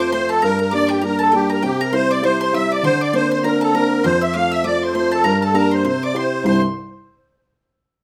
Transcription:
Already playing: F2 A3 C4 F4
0.00 C5 C6
0.11 A3 C4 F4 C5 C6
0.29 A4 A5
0.42 G2 A#4 A#5
0.59 A#4 A#5
0.71 G3 A#3 D4 D5 D6
0.89 G4 G5
1.01 G3 A#3 D4 A#4 A#5
1.19 A4 A5
1.32 G3 A#3 D4 G4 G5
1.50 A#4 A#5
1.62 C3 G4 G5
1.81 A#4 A#5
1.92 G3 C4 E4 C5 C6
2.11 D5 D6
2.22 G3 C4 E4 C5 C6
2.41 C5 C6
2.52 G3 C4 E4 E5 E6
2.72 D5 D6
2.83 D3 C5 C6
3.01 D5 D6
3.13 A#3 C4 D4 C5 C6
3.31 C5 C6
3.43 A#3 C4 D4 A#4 A#5
3.61 A4 A5
3.74 A#3 C4 D4 A#4 A#5
4.04 F2 C5 C6
4.21 E5 E6
4.34 A3 C4 F4 F5 F6
4.52 E5 E6
4.63 A3 C4 F4 D5 D6
4.83 C5 C6
4.94 A3 C4 F4 C5 C6
5.12 A4 A5
5.24 G2 A#4 A#5
5.42 A4 A5
5.52 A#3 D4 G4 A5 A#5
5.57 A#4
5.71 C5 C6
5.84 C3 C5 C6
6.03 D5 D6
6.14 C4 E4 G4 C6
6.19 C5
6.44 C2 G2 C3 G3 E4 G4 C5 C6

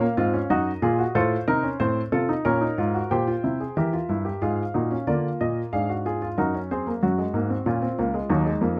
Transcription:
Already playing: F5
0.01 A#3
0.17 G#2 C4 F4
0.33 C#4
0.50 F#2 D#4 F#4 D#5
0.82 A#2 F4 G#4
0.99 F#4
1.15 A2 F4 A4 C5
1.48 C3 D#4 A#4
1.63 C#4
1.79 A2 C4 C5
2.12 C3 F4 A4
2.29 D#4
2.45 A#2 C#4 A#4 C#5
2.61 D#4
2.78 G#2 F4
2.94 F#4
3.11 A#2 G4 C5 G5
3.28 F4
3.44 C3 E4
3.60 G#4
3.77 E3 G4 A#4 E5
3.93 F4
4.09 G2 E4
4.25 G4
4.42 G#2 F4 G#4 F5
4.74 A#2 D#4 F#4
4.91 C#4
5.07 D3 A#3 F4 D5
5.41 A#2 D#5
5.73 G#2 D4 G#4 F5
5.89 F#4
6.06 F4 G#4
6.22 F4
6.38 F#2 D#4 F#4 A#4
6.54 C#4
6.71 C4 G#4 C5
6.87 A#3
7.03 F#2 F#3 F#4
7.18 G#3
7.34 G#2 A#3
7.50 C4
7.66 A#2 C#4 F4
7.82 C4
7.99 C#2 A#3
8.14 G#3
8.30 D#2 F#3 D#4
8.46 G#3
8.61 F2 A#3

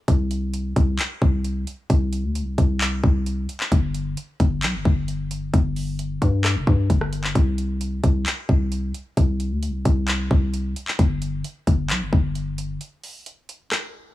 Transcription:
0.08 C2, kick, closed hi-hat
0.31 closed hi-hat
0.54 closed hi-hat
0.76 C2, kick, closed hi-hat
0.99 clap, closed hi-hat
1.22 C2, kick
1.44 closed hi-hat
1.67 closed hi-hat
1.90 C2, kick, closed hi-hat
2.13 closed hi-hat
2.24 D2
2.35 closed hi-hat
2.41 C2
2.58 C2, kick, closed hi-hat
2.81 clap, closed hi-hat
3.04 C2, kick
3.26 closed hi-hat
3.49 closed hi-hat
3.60 clap
3.72 G1, kick, closed hi-hat
3.94 closed hi-hat
4.17 closed hi-hat
4.40 G1, kick, closed hi-hat
4.63 B1, clap, closed hi-hat
4.74 G1
4.85 G1, kick
5.08 closed hi-hat
5.31 closed hi-hat
5.54 G1, kick, closed hi-hat
5.76 open hi-hat
5.99 closed hi-hat
6.22 G2, kick, closed hi-hat
6.44 cross-stick, clap, closed hi-hat
6.56 F1
6.67 G2, kick
6.90 G1, kick, closed hi-hat
7.01 cross-stick
7.13 closed hi-hat
7.24 clap
7.35 C2, kick, closed hi-hat
7.58 closed hi-hat
7.81 closed hi-hat
8.04 C2, kick, closed hi-hat
8.26 clap, closed hi-hat
8.49 C2, kick
8.72 closed hi-hat
8.94 closed hi-hat
9.17 C2, kick, closed hi-hat
9.40 closed hi-hat
9.51 D2
9.63 closed hi-hat
9.68 C2
9.85 C2, kick, closed hi-hat
10.08 clap, closed hi-hat
10.31 C2, kick
10.54 closed hi-hat
10.76 closed hi-hat
10.88 clap
10.99 G1, kick, closed hi-hat
11.22 closed hi-hat
11.44 closed hi-hat
11.67 G1, kick, closed hi-hat
11.90 B1, clap, closed hi-hat
12.01 G1
12.13 G1, kick
12.35 closed hi-hat
12.58 closed hi-hat
12.81 closed hi-hat
13.04 open hi-hat
13.26 closed hi-hat
13.49 closed hi-hat
13.72 cross-stick, clap, closed hi-hat

